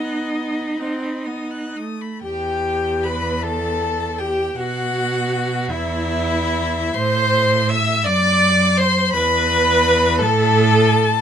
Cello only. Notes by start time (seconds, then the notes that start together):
Already playing: D#4
2.25 E2
4.56 B2
5.68 E2
6.95 A2
8.06 F#2
9.14 E2
10.20 A2